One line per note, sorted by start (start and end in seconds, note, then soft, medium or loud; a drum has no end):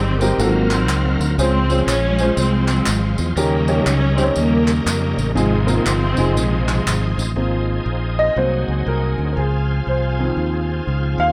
0.00 0.31 G1 medium
0.00 0.17 G#2 medium
0.00 0.35 D#3 medium
0.00 0.37 D#3 medium
0.00 0.35 G3 medium
0.00 0.38 G3 medium
0.00 0.21 C4 loud
0.00 0.37 C4 medium
0.00 0.41 G4 medium
0.21 0.40 G#3 medium
0.21 0.38 C4 medium
0.21 0.40 D#4 medium
0.21 0.40 G4 medium
0.21 0.40 A#4 medium
0.21 tambourine medium
0.38 0.88 G#1 loud
0.38 1.17 G#2 medium
0.38 0.70 D#3 medium
0.38 0.70 F#3 medium
0.38 1.37 F#3 medium
0.38 0.71 A#3 medium
0.38 1.37 C4 medium
0.38 1.24 C4 medium
0.38 1.24 F4 medium
0.38 1.24 F#4 medium
0.38 0.48 A4 medium
0.38 1.37 A#4 medium
0.38 1.37 F5 medium
0.38 tambourine medium
0.46 1.28 A#4 medium
0.71 1.35 D#3 medium
0.71 1.35 F#3 medium
0.71 1.21 C4 loud
0.71 clap medium
0.71 tambourine soft
0.88 1.15 C#2 medium
0.88 clap loud
0.88 tambourine loud
1.19 1.35 D2 medium
1.19 tambourine medium
1.38 1.81 C#2 loud
1.38 2.16 C#3 medium
1.38 1.87 F3 medium
1.38 1.87 G#3 medium
1.38 3.33 G#3 medium
1.38 1.85 C4 loud
1.38 1.57 C#4 medium
1.38 1.46 D#4 soft
1.38 1.57 F4 medium
1.38 1.57 G#4 medium
1.38 3.34 C5 medium
1.38 1.57 C5 medium
1.38 tambourine medium
1.44 3.37 F4 medium
1.70 1.93 C#4 medium
1.70 1.93 F4 medium
1.70 1.93 G#4 medium
1.70 1.93 C5 medium
1.70 tambourine medium
1.87 2.30 A#1 loud
1.87 2.37 F3 medium
1.87 2.37 G#3 medium
1.87 2.39 C#4 loud
1.87 clap medium
1.87 tambourine medium
2.19 2.75 G#3 medium
2.19 2.75 F4 medium
2.19 2.75 G#4 medium
2.19 2.75 C5 medium
2.19 tambourine medium
2.37 2.80 C2 medium
2.37 3.34 F3 medium
2.37 3.33 G#3 medium
2.37 3.20 C4 medium
2.37 tambourine medium
2.68 clap medium
2.68 tambourine medium
2.86 3.14 G#1 medium
2.86 clap loud
2.86 tambourine loud
3.18 3.35 E2 loud
3.18 tambourine medium
3.35 3.79 D#2 loud
3.35 4.33 C#3 medium
3.35 4.15 D#3 medium
3.35 5.32 G3 medium
3.35 4.33 G3 medium
3.35 3.83 A#3 loud
3.35 5.32 C#4 medium
3.35 3.55 C#4 medium
3.35 5.32 D#4 medium
3.35 3.55 D#4 medium
3.35 3.56 G4 medium
3.35 5.32 A#4 medium
3.35 3.56 A#4 medium
3.35 tambourine medium
3.68 3.92 C#4 medium
3.68 3.92 D#4 medium
3.68 3.92 G4 medium
3.68 3.92 C#5 medium
3.68 tambourine medium
3.85 4.29 C#2 medium
3.85 4.18 C#4 loud
3.85 clap medium
3.85 tambourine medium
4.17 4.36 C4 loud
4.17 4.73 C#4 medium
4.17 4.73 D#4 medium
4.17 4.73 G4 medium
4.17 4.23 C5 medium
4.17 tambourine medium
4.24 4.76 C#5 medium
4.35 4.79 D#2 medium
4.35 4.85 C#3 medium
4.35 4.85 G3 medium
4.35 4.82 A#3 loud
4.35 tambourine medium
4.68 clap medium
4.68 tambourine medium
4.85 5.13 F2 loud
4.85 5.33 C#3 medium
4.85 5.33 G3 medium
4.85 5.24 A#3 medium
4.85 clap medium
4.85 tambourine loud
5.18 5.34 A1 medium
5.18 tambourine medium
5.35 5.78 G#1 loud
5.35 6.13 G#2 medium
5.35 6.32 C3 medium
5.35 5.85 F3 medium
5.35 7.32 F3 medium
5.35 5.65 G#3 medium
5.35 5.54 C4 medium
5.35 7.32 C4 medium
5.35 5.54 D#4 medium
5.35 7.32 D#4 medium
5.35 5.54 F4 medium
5.35 5.54 G#4 medium
5.35 7.32 G#4 medium
5.35 tambourine medium
5.66 5.86 A#3 medium
5.66 5.90 C4 medium
5.66 5.90 D#4 medium
5.66 5.91 F4 medium
5.66 5.91 A#4 medium
5.66 tambourine medium
5.86 6.13 G1 medium
5.86 6.82 D#3 medium
5.86 6.35 F3 medium
5.86 6.36 C4 loud
5.86 clap medium
5.86 tambourine medium
6.17 6.37 F1 medium
6.17 6.73 C4 medium
6.17 6.73 D#4 medium
6.17 6.73 F4 medium
6.17 6.74 G#4 medium
6.17 tambourine medium
6.36 6.79 A#1 medium
6.36 7.32 C3 medium
6.36 7.32 F3 medium
6.36 7.18 G#3 medium
6.36 tambourine medium
6.68 clap medium
6.68 tambourine soft
6.87 7.13 G#1 medium
6.87 clap loud
6.87 tambourine medium
7.18 7.34 A1 medium
7.18 tambourine medium
7.35 7.78 G#1 medium
7.35 8.34 F3 medium
7.35 8.14 F3 soft
7.35 8.14 A#3 soft
7.35 8.34 C4 medium
7.35 8.15 C4 medium
7.35 8.34 D#4 medium
7.35 8.34 G#4 medium
7.35 8.35 C5 medium
7.35 9.35 D#5 medium
7.35 8.36 F5 medium
7.35 11.32 G#5 medium
7.86 8.29 A#1 medium
8.19 8.36 D#5 loud
8.35 8.63 C2 medium
8.35 9.34 F#3 medium
8.35 9.15 F#3 soft
8.35 9.15 A#3 soft
8.35 8.44 B3 soft
8.35 9.15 C4 medium
8.35 9.34 D#4 medium
8.35 9.35 G#4 medium
8.35 9.35 C5 medium
8.35 8.89 C5 medium
8.35 9.36 F#5 medium
8.42 9.35 C4 medium
8.68 8.84 C#2 medium
8.87 9.14 C2 medium
8.87 9.31 A#4 medium
9.18 9.34 D2 medium
9.33 11.32 F3 medium
9.33 11.32 C4 soft
9.33 11.32 F4 soft
9.33 11.32 G#4 medium
9.33 9.37 A#4 medium
9.37 9.80 C#2 medium
9.37 9.89 G#4 medium
9.37 11.32 C5 medium
9.37 11.32 F5 medium
9.87 10.30 C2 medium
9.87 10.17 C5 medium
10.19 11.32 D#3 medium
10.19 11.32 F3 medium
10.19 11.32 C4 medium
10.37 10.80 D#2 medium
10.87 11.14 C#2 medium
11.18 11.32 D#2 medium
11.18 11.32 F5 loud